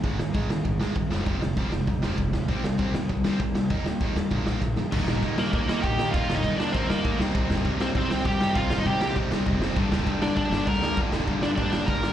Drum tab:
CC |----------------|----------------|----------------|----------------|
HH |o---o---o---o---|o---o---o---o---|o---o---o---o---|o---o---o-------|
SD |--o---o---o---o-|--o---o---o---o-|--o---o---o---o-|--o---o---o-o-o-|
BD |o---o---o---o---|o---o---o---o---|o---o---o---o---|o---o---o---o---|

CC |x---x---x---x---|x---x---x---x---|x---x---x---x---|x---x---x---x---|
HH |----------------|----------------|----------------|----------------|
SD |--o---o---o---o-|--o---o---o---o-|--o---o---o---o-|--o---o---o---o-|
BD |o--oo---o---o---|o--oo---o---o---|o--oo---o---o---|o--oo---o---o---|

CC |x---x---x---x---|x---x---x---x---|
HH |----------------|----------------|
SD |--o---o---o---o-|--o---o---o---o-|
BD |o--oo---o---o---|o--oo---o---o---|